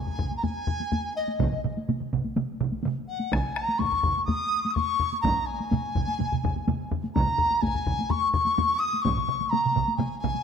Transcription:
Already playing: dizi G#5
0.07 taiko low-mid
0.19 taiko, taiko low-mid
0.31 taiko high
0.37 dizi A#5
0.43 dizi G#5, taiko low-mid, taiko high
0.67 taiko low-mid
0.80 taiko high
0.92 taiko low-mid, taiko high
1.16 dizi D#5
1.28 taiko high
1.40 taiko, taiko mid, taiko high
1.52 taiko mid
1.64 taiko mid
1.77 taiko high
1.89 taiko mid, taiko high
2.00 taiko mid
2.13 taiko, taiko mid
2.24 taiko high
2.36 taiko mid, taiko high
2.61 taiko, taiko mid
2.72 taiko high
2.83 taiko mid, taiko high
3.08 dizi F#5
3.20 taiko high
3.32 dizi G#5, taiko rim, taiko, taiko high
3.54 dizi A#5, taiko rim
3.68 taiko high
3.78 dizi C#6, taiko, taiko low-mid, taiko high
3.92 taiko low-mid
4.03 taiko, taiko low-mid
4.17 taiko high
4.25 dizi D#6, taiko low-mid, taiko high
4.65 taiko high
4.70 dizi C#6 D#6
4.76 taiko low-mid, taiko high
5.00 taiko low-mid
5.12 taiko high
5.21 dizi A#5, taiko, taiko low-mid, taiko mid, taiko high
5.45 dizi G#5
5.60 taiko high
5.72 taiko low-mid, taiko mid, taiko high
5.95 taiko, taiko low-mid, taiko mid
6.08 taiko high
6.20 taiko low-mid, taiko mid, taiko high
6.32 taiko low-mid, taiko mid
6.44 taiko, taiko low-mid, taiko mid, taiko high
6.56 taiko high
6.68 taiko low-mid, taiko mid, taiko high
6.91 taiko low-mid, taiko mid
7.04 taiko high
7.14 dizi A#5, taiko, taiko low-mid, taiko high
7.28 taiko low-mid
7.38 taiko low-mid
7.51 taiko high
7.61 dizi G#5, taiko, taiko low-mid, taiko high
7.75 taiko low-mid
7.86 taiko, taiko low-mid
7.99 taiko high
8.10 dizi C#6, taiko low-mid, taiko high
8.32 dizi C#6, taiko low-mid
8.46 taiko high
8.58 taiko low-mid, taiko high
8.79 dizi D#6
8.94 taiko high
9.02 dizi C#6, taiko, taiko mid, taiko high
9.17 taiko mid
9.29 taiko mid
9.41 taiko high
9.49 dizi A#5, taiko mid, taiko high
9.66 taiko mid
9.76 taiko, taiko mid
9.88 taiko high
9.96 dizi G#5, taiko mid, taiko high
10.19 dizi G#5
10.24 taiko, taiko mid
10.35 taiko high

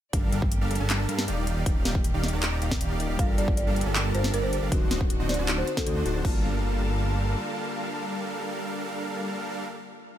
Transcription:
0.13 detuned saw bass G1, string section F3 A3 A#3 G4 D5, supersaw synth G3 D4 A4 A#4 F5, kick, closed hi-hat
0.32 detuned saw bass G1, supersaw synth G3 D4 A4 A#4 F5, closed hi-hat
0.42 kick
0.52 closed hi-hat
0.61 detuned saw bass G1, supersaw synth G3 D4 A4 A#4 F5
0.71 closed hi-hat
0.76 closed hi-hat
0.80 detuned saw bass G1, supersaw synth G3 D4 A4 A#4 A5
0.90 clap, closed hi-hat
1.09 detuned saw bass G2, supersaw synth G3 D4 A4 A#4 F5, closed hi-hat
1.19 snare
1.28 detuned saw bass D#1, supersaw synth D#3 D#4 G4 D5 F5, closed hi-hat
1.47 string section D#3 G3 G4, closed hi-hat
1.57 detuned saw bass D#1, supersaw synth D#3 D#4 G4 D5 F5
1.66 detuned saw bass D#1, supersaw synth D#3 G4 D5, kick, closed hi-hat
1.85 detuned saw bass D#1, supersaw synth D#3 D#4 G4 D5 F5, snare, closed hi-hat
1.95 kick
2.04 closed hi-hat
2.14 detuned saw bass D#1, supersaw synth D#3 D#4 G4 D5 F5
2.24 snare, closed hi-hat
2.28 closed hi-hat
2.33 detuned saw bass D#1, supersaw synth D#3 D#4 G4 D5 A#5
2.43 clap, closed hi-hat
2.62 detuned saw bass D#1, supersaw synth D#3 D#4 G4 D5 F5, closed hi-hat
2.71 kick, snare
2.81 detuned saw bass D#1, supersaw synth D#3 D#4 G4 D5 F5, closed hi-hat
3.00 closed hi-hat
3.10 detuned saw bass D#1, supersaw synth D#3 D#4 G4 D5 F5
3.17 detuned saw bass G1, string section F3, synth keys G3 F4 A4, supersaw synth G3 D4 A4 A#4 F5, marimba F5, kick, closed hi-hat
3.21 synth keys A#4
3.38 detuned saw bass G1, supersaw synth G3 D4 A4 A#4 F5, marimba D5, closed hi-hat
3.48 kick
3.57 marimba D5, closed hi-hat
3.67 detuned saw bass G1, supersaw synth G3 D4 A4 A#4 F5
3.76 closed hi-hat
3.81 closed hi-hat
3.86 detuned saw bass G1, supersaw synth G3 D4 A4 A#4 A5
3.95 clap, closed hi-hat
4.13 detuned saw bass G1, synth keys G3 F4 A4 A#4, supersaw synth G3 D4 A4 A#4 F5, marimba C5, closed hi-hat
4.24 snare
4.34 detuned saw bass G1, supersaw synth G3 D4 A4 A#4 D5, marimba A#4, closed hi-hat
4.44 marimba C5
4.53 marimba C5, closed hi-hat
4.63 detuned saw bass G1, supersaw synth G3 D4 A4 A#4 F5
4.70 detuned saw bass D1, synth keys D3 C4 D#4 F#4, supersaw synth D3 D4 F#4 C5 D#5, string section C4 F#4, kick, closed hi-hat
4.91 detuned saw bass D1, supersaw synth D3 D4 F#4 C5 D#5, snare, closed hi-hat
5.01 kick
5.10 closed hi-hat
5.20 detuned saw bass D1, supersaw synth D3 D4 F#4 C5 D#5
5.29 marimba D5, snare, closed hi-hat
5.34 closed hi-hat
5.39 detuned saw bass D1, supersaw synth D3 D4 F#4 C5 A5
5.47 synth keys D3 C4 D#4 F#4, clap, closed hi-hat
5.58 marimba C5
5.66 synth keys D3 C4 D#4 F#4, marimba C5, closed hi-hat
5.77 marimba A4, kick, snare
5.86 detuned saw bass D2, supersaw synth D3 D4 F#4 C5 D#5, marimba A4, closed hi-hat
6.05 detuned saw bass D1, synth keys D3 C4 D#4 F#4, supersaw synth D3 D4 F#4 C5 A5, closed hi-hat
6.22 detuned saw bass G1, string section D3 G3 A#3 F4 A5, synth keys G3 F4, supersaw synth G3 D4 F5, kick, crash
6.26 synth keys A#3 A5

